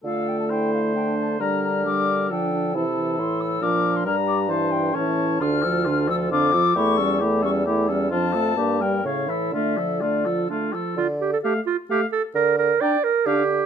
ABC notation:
X:1
M:3/4
L:1/16
Q:1/4=132
K:Dm
V:1 name="Flute"
f2 g a g2 f2 g2 a2 | b2 b2 d'4 g4 | a4 c'2 e'2 d'3 c' | b4 a2 g2 a4 |
f'6 e'2 d'4 | ^c'6 c'2 z4 | a6 g2 f2 e2 | e4 d4 z4 |
z4 a4 a4 | z4 b4 a4 |]
V:2 name="Oboe"
A4 c8 | B8 A4 | A8 B4 | B2 d2 c4 ^c4 |
F2 A2 F2 A2 F2 A2 | G2 A2 G2 A2 G2 A2 | F2 A2 G2 B2 ^c2 A2 | F2 A2 F2 A2 F2 A2 |
z4 f4 f4 | z4 g4 f4 |]
V:3 name="Clarinet"
F4 E4 D4 | D8 D2 D2 | E4 E4 D4 | D8 ^C4 |
D2 F2 D2 F2 D2 F2 | E2 ^C2 E2 C2 E2 C2 | D2 F2 D2 B,2 ^C2 E2 | D2 F2 D2 F2 D2 F2 |
F2 G A G2 F2 G2 A2 | B2 B2 d2 B2 G4 |]
V:4 name="French horn" clef=bass
A,12 | G,4 G,4 F,4 | E,2 E,6 F,4 | G,4 E,4 E,4 |
D,2 F,2 D,2 F,2 D,2 F,2 | A,2 G,2 A,2 G,2 A,2 G,2 | F,2 A,2 B,2 G,2 ^C,2 E,2 | A,2 F,2 A,2 F,2 A,2 F,2 |
z4 A,4 A,4 | z4 D4 D4 |]
V:5 name="Bassoon" clef=bass
D,12 | D,8 D,4 | C,4 A,,4 B,,4 | G,,8 A,,4 |
D,,8 F,,4 | E,,12 | F,,4 G,,4 A,,4 | D,8- D,2 z2 |
D,4 z8 | D,4 z4 D,4 |]